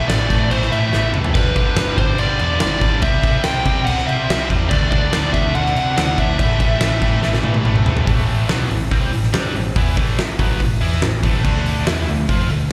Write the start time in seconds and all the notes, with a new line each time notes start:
0.08 A1 A2 E3 A3 D5, snare, crash
0.29 A2 E3 A3, kick, crash
0.50 A1 A2 E3 A3 C5, crash
0.62 snare
0.71 A2 E3 A3 E5, crash
0.92 A1 A2 E3 A3, snare
1.13 C2 A2 E3 A3, mid tom
1.24 floor tom
1.34 G1 G2 D3 G3 B4, kick, crash
1.55 G2 D3 G3 B4, kick, crash
1.76 G1 G2 D3 G3, snare, crash
1.97 G1 G2 D3 G3 C5, kick, crash
2.18 G1 G2 D3 G3 D5, crash
2.39 E2 G2 D3 G3, crash
2.60 G1 G2 D3 G3 D5, snare, crash
2.81 G1 G2 D3 G3, kick, crash
3.02 C2 C3 G3 C4 E5, kick, crash
3.23 C3 G3 C4, kick, crash
3.44 C2 C3 G3 C4 G5, snare, crash
3.65 C3 G3 C4, kick, crash
3.85 C2 C3 G3 C4 F#5, crash
3.98 snare
4.07 C3 G3 C4 E5, crash
4.29 C2 C3 G3 C4, snare, crash
4.50 E2 C3 G3 C4, kick, crash
4.69 D2 D3 A3 D4 D5, kick, crash
4.91 D3 A3 D4 D5, kick, crash
5.13 D2 D3 A3 D4, snare, crash
5.33 D2 D3 A3 D4 E5, kick, crash
5.54 D2 D3 A3 D4 F#5, crash
5.66 snare
5.76 C3 D3 A3 D4, crash
5.97 D2 D3 A3 D4 F#5, snare, crash
6.17 D2 D3 A3 D4 E5, kick, crash
6.38 A1 A2 E3 A3, kick, crash
6.59 A2 E3 A3, kick, crash
6.81 A1 A2 E3 A3, snare, crash
7.02 A2 E3 A3, kick, crash
7.22 A1 A2 E3 A3, snare
7.33 snare
7.43 A2 E3 A3, high tom
7.54 high tom
7.65 A1 A2 E3 A3, mid tom
7.76 mid tom
7.86 C2 A2 E3 A3, floor tom
7.97 floor tom
8.07 A1 A2 E3 A3, kick, open hi-hat
8.29 open hi-hat
8.48 B1 B2 F#3 B3, snare, open hi-hat
8.70 A1 A2 E3, open hi-hat
8.91 C2 C3 G3 C4, kick, open hi-hat
9.12 A1 A2 E3, open hi-hat
9.23 snare
9.33 G2 G3 D4 G4, snare, open hi-hat
9.54 A1 A2 E3, open hi-hat
9.76 E2 E3 B3 E4, kick, open hi-hat
9.97 A1 A2 E3 A3, kick, open hi-hat
10.19 muted distorted electric guitar stroke, snare, open hi-hat
10.39 B1 B2 F#3 B3, kick, open hi-hat
10.60 A1 A2 E3, kick, open hi-hat
10.81 E2 E3 B3 E4, open hi-hat
10.92 snare
11.02 A1 A2 E3, snare, open hi-hat
11.23 A1 A2 E3 A3, kick, open hi-hat
11.44 D2 D3 A3 D4, kick, crash
11.66 open hi-hat
11.86 E2 E3 B3 E4, snare, open hi-hat
12.07 D2 D3 A3, open hi-hat
12.29 F2 F3 C4 F4, kick, open hi-hat
12.49 D2 D3 A3, open hi-hat